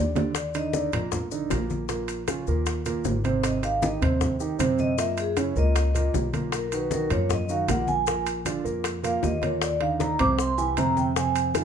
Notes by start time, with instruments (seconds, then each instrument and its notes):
Already playing: upright bass D#2, vibraphone D5
0.15 grand piano D3 D4 D5, high bongo, high conga, low timbale, maracas
0.35 vibraphone D5, high bongo, high conga, high timbale, maracas
0.54 grand piano D3 D4 D#4, vibraphone D#5, high conga, high timbale, maracas
0.73 grand piano D3 D4 D#4, vibraphone D5, high bongo, high conga, maracas
0.93 upright bass A#1, grand piano A#2 A#3 A#4, high bongo, high conga, low conga, high timbale, maracas
1.12 high bongo, high conga, low conga, maracas
1.31 grand piano D3 D4 D#4, high bongo, high conga, maracas
1.50 upright bass A#1, grand piano A#2 A#3 A#4, high bongo, low bongo, high conga, high timbale, low timbale, maracas
1.70 high bongo, high conga, maracas
1.89 grand piano A#2 A#3 A#4, high bongo, high conga, high timbale, maracas
2.08 high conga, high timbale, maracas
2.28 grand piano C#3 C#4 F4, high bongo, high conga, high timbale, maracas
2.47 upright bass D#2, grand piano A#2 A#3 A#4, high bongo, maracas
2.66 high bongo, high conga, high timbale, maracas
2.85 grand piano A#2 A#3 A#4, high bongo, high conga, high timbale, maracas
3.05 upright bass G#1, high bongo, low bongo, high conga, low timbale, maracas
3.24 grand piano C3 C4 C5, high bongo, high conga, high timbale, maracas
3.43 vibraphone D#5, high bongo, high timbale, maracas
3.62 grand piano D#3 D#4 G4, vibraphone F5, high conga, high timbale, maracas
3.82 grand piano D#3 D#4 G4, vibraphone D#5, high bongo, high conga, maracas
4.01 upright bass D#2, grand piano C3 C4 C5, high bongo, high conga, low conga, high timbale, maracas
4.21 high bongo, high conga, low conga, maracas
4.40 grand piano D#3 D#4 G4, high bongo, high conga, maracas
4.59 upright bass F#2, grand piano C3 C4 C5, high bongo, low bongo, high conga, high timbale, maracas
4.78 vibraphone D#5, high bongo, high conga, maracas
4.98 grand piano A#2 A#3 A#4, vibraphone E5, high bongo, high conga, high timbale, maracas
5.17 vibraphone G#4, high conga, high timbale, maracas
5.37 grand piano C#3 C#4 E4, vibraphone C#5, high bongo, high conga, high timbale, maracas
5.56 upright bass C#2, grand piano A#2 A#3 A#4, vibraphone D#5, high bongo, maracas
5.76 high bongo, high conga, high timbale, maracas
5.95 grand piano A#2 A#3 A#4, high bongo, high conga, high timbale, maracas
6.14 upright bass B1, high bongo, low bongo, high conga, low timbale, maracas
6.33 grand piano A#2 A#3 A#4, high bongo, high conga, high timbale, maracas
6.52 vibraphone A#4, high bongo, high conga, high timbale, maracas
6.72 grand piano D#3 D#4 F#4, vibraphone B4, high conga, high timbale, maracas
6.91 grand piano D#3 D#4 F#4, vibraphone A#4, high bongo, high conga, maracas
7.10 upright bass F#2, grand piano A#2 A#3 A#4, vibraphone C#5, high bongo, high conga, low conga, high timbale, maracas
7.29 vibraphone D#5, high bongo, high conga, low conga, maracas
7.49 grand piano D#3 D#4 F#4, vibraphone F5, high bongo, high conga, maracas
7.68 upright bass A#1, grand piano A#2 A#3 A#4, vibraphone F#5, high bongo, low bongo, high conga, high timbale, low timbale, maracas
7.87 vibraphone G#5, high bongo, high conga, maracas
8.07 grand piano A#2 A#3 A#4, high bongo, high conga, high timbale, maracas
8.26 high conga, high timbale, maracas
8.45 grand piano D3 D4 F4, high bongo, high conga, high timbale, maracas
8.64 upright bass F2, grand piano A#2 A#3 A#4, high bongo, maracas
8.84 high bongo, high conga, high timbale, maracas
9.03 grand piano A#2 A#3 A#4, vibraphone F5, high bongo, high conga, high timbale, maracas
9.23 upright bass D#2, vibraphone D#5, high bongo, low bongo, high conga, low timbale, maracas
9.42 grand piano A#2 A#3 A#4, vibraphone C#5, high bongo, high conga, high timbale, maracas
9.62 vibraphone D5, high bongo, high conga, high timbale, maracas
9.80 grand piano D3 D4 D#4, vibraphone F5, high conga, high timbale
9.99 grand piano D3 D4 D#4, vibraphone A#5, high bongo, high conga, maracas
10.19 upright bass C2, grand piano C3 C4 C5, vibraphone D6, high bongo, high conga, low conga, high timbale, maracas
10.39 vibraphone C6, high bongo, high conga, maracas
10.58 grand piano E3 E4 G4, vibraphone G#5, high bongo, high conga, maracas
10.77 upright bass F2, grand piano C3 C4 C5, vibraphone A#5, high bongo, low bongo, high conga, high timbale, maracas
10.97 vibraphone G5, high bongo, high conga, maracas
11.16 grand piano C3 C4 C5, vibraphone G#5, high bongo, high conga, high timbale, maracas
11.35 high conga, high timbale, maracas
11.54 grand piano D#3 D#4 F4, high bongo, high conga, high timbale, maracas